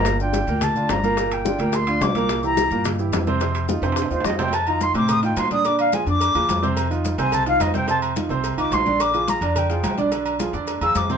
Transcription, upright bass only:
X:1
M:4/4
L:1/8
Q:1/4=215
K:Gm
V:1 name="Upright bass" clef=bass
G,,,3 D,,3 G,,,2- | G,,,3 D,,3 C,,2- | C,,3 G,,3 F,,2- | F,,3 F,,2 E,, F,,2- |
F,,3 A,,3 B,,2- | B,,3 F,,2 E,, F,,2- | F,,3 C,,3 F,,2- | F,,3 C,,2 C,, B,,,2- |
B,,,3 F,,3 =B,,,2- | =B,,,3 F,,2 =E,, F,,2 |]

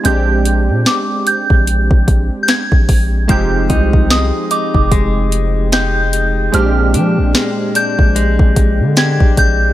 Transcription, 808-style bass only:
X:1
M:4/4
L:1/16
Q:"Swing 16ths" 1/4=74
K:Bbmix
V:1 name="808-style bass" clef=bass
B,,,3 B,, z3 B,,,2 B,,,2 z2 B,,,3 | F,,,2 C,,3 z2 F,,,8- F,,, | B,,,2 F, B,,, z3 B,,,2 B,,,2 D,2 B,,,3 |]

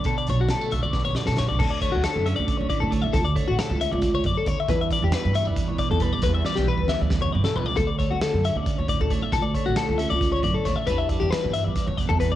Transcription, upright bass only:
X:1
M:7/8
L:1/16
Q:1/4=136
K:D
V:1 name="Upright bass" clef=bass
z2 B,,,2 z2 B,,, B,,,2 B,,, z B,, B,,, B,,, | D,,3 D,, z F,,2 D,, z D,,2 D,,2 D, | D,,2 z A,,, z C,,2 C,,3 F,, z _E,, z | E,,3 E,, z G,,2 E,, z E,,2 E,,2 E, |
E,,2 z B,,, z D,,2 D,,3 G,, z C,, z | D,,3 D,, z F,,2 D,, z D,,2 D,,2 D, | D,,2 z A,,, z C,,2 C,,3 F,, z _E,, z | E,,3 E,, z G,,2 E,, z E,,2 E,,2 z |]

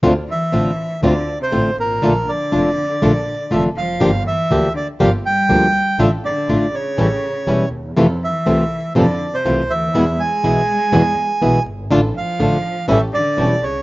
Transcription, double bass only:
X:1
M:4/4
L:1/8
Q:1/4=122
K:Dm
V:1 name="Double bass" clef=bass
D,, z A,,, z D,, z A,,, ^G,,, | B,,, z F,,, z B,,, z F,,, F,,, | G,,, z D,, z G,,, z D,, z | A,,, z A,,, z A,,, z E,,, _E,, |
F,, z C,, z F,, z C,, D,, | E,, z =B,,, z E,, z B,,, G,,, | A,,, z A,,, z A,,, z E,,, C,, |]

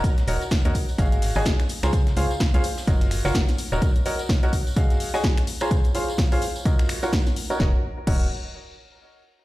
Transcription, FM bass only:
X:1
M:4/4
L:1/16
Q:"Swing 16ths" 1/4=127
K:Ebdor
V:1 name="FM bass" clef=bass
z2 E,,, z2 E,, z2 A,,,3 A,,, z3 D,,- | D,,2 D,, z2 D,, z2 G,,,3 G,,, z3 E,,, | z16 | z16 |
E,,, z3 E,,,2 z8 z2 |]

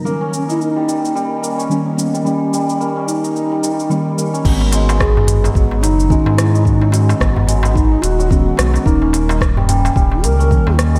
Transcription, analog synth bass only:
X:1
M:4/4
L:1/16
Q:"Swing 16ths" 1/4=109
K:G#m
V:1 name="Analog synth bass" clef=bass
z16 | z16 | G,,,6- G,,, z G,,,2 F,,,2 z G,,3- | G,,3 z G,,,4- G,,, z D,,,3 z B,,, z |
D,,,6- D,,, z D,,,2 C,,2 z D,,3 |]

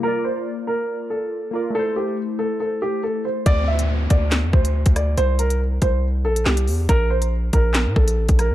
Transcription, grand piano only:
X:1
M:4/4
L:1/8
Q:1/4=140
K:Cmix
V:1 name="Grand piano"
B c z B2 A2 B | A G z A A G A c | d e z d2 c2 d | c B z c z A G2 |
B c z B2 A2 B |]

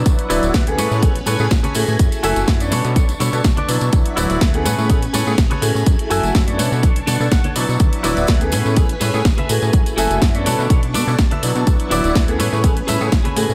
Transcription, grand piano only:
X:1
M:4/4
L:1/16
Q:1/4=124
K:A
V:1 name="Grand piano"
[F,B,DE]2 [F,B,DE]3 [A,B,CG]3 [A,B,CG] z2 [A,B,CG] z2 [A,EFG]2- | [A,EFG]2 [A,EFg]3 [B,CDA]3 [B,CDA] z2 [B,CDA] z2 [F,B,DE]2- | [F,B,DE]2 [F,B,DE]3 [A,B,CG]3 [A,B,CG] z2 [A,B,CG] z2 [A,EFG]2- | [A,EFG]2 [A,EFg]3 [B,CDA]3 [B,CDA] z2 [B,CDA] z2 [F,B,DE]2- |
[F,B,DE]2 [F,B,DE]3 [A,B,CG]3 [A,B,CG] z2 [A,B,CG] z2 [A,EFG]2- | [A,EFG]2 [A,EFg]3 [B,CDA]3 [B,CDA] z2 [B,CDA] z2 [F,B,DE]2- | [F,B,DE]2 [F,B,DE]3 [A,B,CG]3 [A,B,CG] z2 [A,B,CG] z2 [A,EFG]2 |]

